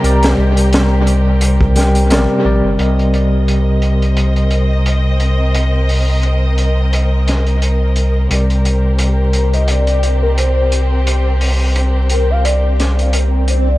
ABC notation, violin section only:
X:1
M:4/4
L:1/8
Q:"Swing 16ths" 1/4=87
K:Cm
V:1 name="Violin section"
[CGB]8 | [CBe]8- | [CBe]8 | [CG]8- |
[CG]8 |]